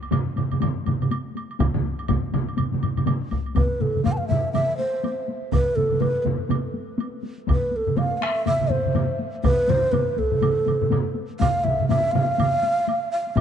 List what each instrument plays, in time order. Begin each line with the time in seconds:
0.02 taiko high, high woodblock
0.11 taiko low-mid, taiko mid, taiko high, high woodblock
0.26 taiko high
0.36 taiko low-mid, taiko mid, taiko high, high woodblock
0.51 taiko low-mid, taiko mid, taiko high, high woodblock
0.60 taiko low-mid, taiko mid, taiko high, high woodblock
0.86 taiko low-mid, taiko mid, taiko high, high woodblock
1.00 taiko low-mid, taiko mid, taiko high, high woodblock
1.11 taiko high, high woodblock
1.25 taiko high
1.35 taiko high, high woodblock
1.49 taiko high, high woodblock
1.59 taiko, taiko low-mid, taiko mid, taiko high, high woodblock
1.75 taiko low-mid, taiko mid, taiko high
1.83 taiko high
1.98 taiko high, high woodblock
2.08 taiko, taiko low-mid, taiko mid, taiko high, high woodblock
2.23 taiko high
2.32 taiko low-mid, taiko mid, taiko high, high woodblock
2.48 taiko high, high woodblock
2.57 taiko low-mid, taiko mid, taiko high, high woodblock
2.72 taiko low-mid, taiko mid, taiko high
2.82 taiko low-mid, taiko mid, taiko high, high woodblock
2.97 taiko low-mid, taiko mid, taiko high, high woodblock
3.06 taiko low-mid, taiko mid, taiko high, high woodblock
3.22 taiko high
3.31 taiko, taiko high, high woodblock
3.46 taiko high, high woodblock
3.55 shakuhachi B4, taiko, taiko low-mid, taiko mid, taiko high, high woodblock
3.80 shakuhachi A4, taiko low-mid, taiko mid, taiko high
3.96 taiko low-mid, taiko mid
4.04 shakuhachi F5, taiko low-mid, taiko mid, taiko high, high woodblock
4.12 shakuhachi A5
4.17 shakuhachi F5, taiko high
4.28 shakuhachi E5, taiko low-mid, taiko mid, taiko high
4.44 taiko high
4.53 shakuhachi E5, taiko low-mid, taiko mid, taiko high, high woodblock
4.69 taiko high
4.77 shakuhachi C5, taiko high
4.94 taiko high
5.04 taiko high, high woodblock
5.28 taiko high
5.42 taiko high
5.52 shakuhachi B4, taiko, taiko low-mid, taiko mid, taiko high, high woodblock
5.67 taiko high
5.76 shakuhachi A4, taiko low-mid, taiko mid, taiko high
5.92 taiko low-mid, taiko mid, taiko high
6.00 shakuhachi B4, taiko low-mid, taiko mid, taiko high, high woodblock
6.16 taiko high
6.22 shakuhachi B4, taiko low-mid, taiko mid, taiko high
6.39 taiko high
6.49 taiko low-mid, taiko mid, taiko high, high woodblock
6.64 taiko high
6.74 taiko high
6.88 taiko high
6.98 taiko high, high woodblock
7.23 taiko high
7.38 taiko high
7.47 taiko, taiko low-mid, taiko mid, taiko high, high woodblock
7.52 shakuhachi B4
7.62 taiko high
7.71 taiko high
7.76 shakuhachi A4
7.86 taiko low-mid, taiko mid, taiko high
7.97 shakuhachi F5, taiko low-mid, taiko mid, taiko high, high woodblock
8.11 taiko high
8.17 shakuhachi F5, taiko high
8.22 shakuhachi E5, taiko rim
8.36 taiko high
8.46 shakuhachi E5, taiko low-mid, taiko mid, taiko high, high woodblock
8.60 taiko low-mid, taiko mid, taiko high
8.70 shakuhachi C5, taiko low-mid, taiko mid, taiko high
8.84 taiko low-mid, taiko mid, taiko high
8.95 taiko low-mid, taiko mid, taiko high, high woodblock
9.19 taiko high
9.34 taiko high
9.44 shakuhachi B4, taiko, taiko low-mid, taiko mid, taiko high, high woodblock
9.58 taiko high
9.68 shakuhachi C5, taiko low-mid, taiko mid, taiko high
9.82 taiko high
9.92 shakuhachi B4, taiko low-mid, taiko mid, taiko high, high woodblock
10.17 shakuhachi A4, taiko, taiko high
10.32 taiko low-mid, taiko mid
10.42 taiko low-mid, taiko mid, taiko high, high woodblock
10.56 taiko high
10.66 taiko low-mid, taiko mid, taiko high, high woodblock
10.81 taiko low-mid, taiko mid, taiko high
10.91 taiko low-mid, taiko mid, taiko high, high woodblock
11.05 taiko high
11.15 taiko high
11.30 taiko high
11.40 shakuhachi F5, taiko, taiko low-mid, taiko mid, taiko high, high woodblock
11.55 taiko high
11.64 shakuhachi E5, taiko low-mid, taiko mid, taiko high
11.80 taiko low-mid, taiko mid, taiko high
11.89 shakuhachi E5, taiko low-mid, taiko mid, taiko high, high woodblock
12.04 taiko high
12.12 shakuhachi F5, taiko low-mid, taiko high
12.16 taiko mid
12.28 taiko high
12.38 taiko low-mid, taiko mid, taiko high, high woodblock
12.53 taiko high
12.63 taiko high
12.79 taiko high
12.88 taiko high, high woodblock
13.12 shakuhachi F5
13.27 taiko high
13.36 shakuhachi E5, taiko, taiko low-mid, taiko mid, taiko high, high woodblock